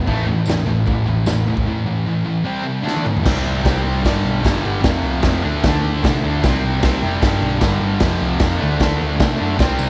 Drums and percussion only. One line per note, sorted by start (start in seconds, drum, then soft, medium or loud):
0.07 kick loud
0.07 floor tom medium
0.28 floor tom medium
0.46 snare loud
0.46 floor tom medium
0.46 tambourine medium
0.69 floor tom medium
0.87 kick loud
0.87 floor tom medium
1.08 floor tom medium
1.26 snare loud
1.26 floor tom medium
1.26 tambourine medium
1.47 floor tom medium
1.57 kick medium
2.87 snare medium
2.97 high tom medium
3.06 mid tom medium
3.17 floor tom medium
3.26 kick loud
3.26 snare loud
3.26 crash loud
3.26 crash medium
3.65 kick loud
3.65 snare loud
3.65 crash medium
4.05 kick loud
4.05 snare loud
4.05 crash medium
4.45 kick loud
4.45 snare loud
4.45 crash medium
4.84 kick loud
4.84 snare loud
4.84 crash medium
5.22 kick loud
5.22 snare loud
5.22 crash medium
5.63 kick loud
5.63 snare loud
5.63 crash medium
6.04 kick loud
6.04 snare loud
6.04 crash medium
6.43 kick loud
6.43 snare loud
6.43 crash medium
6.82 kick loud
6.82 snare loud
6.82 crash medium
7.22 kick loud
7.22 snare loud
7.22 crash medium
7.61 kick loud
7.61 snare loud
7.61 crash medium
8.00 kick loud
8.00 snare loud
8.00 crash medium
8.39 kick loud
8.39 snare loud
8.39 crash medium
8.80 kick loud
8.80 snare loud
8.80 crash medium
9.20 kick loud
9.20 snare loud
9.20 crash medium
9.59 kick loud
9.59 snare loud
9.59 tambourine soft
9.59 crash medium
9.79 tambourine medium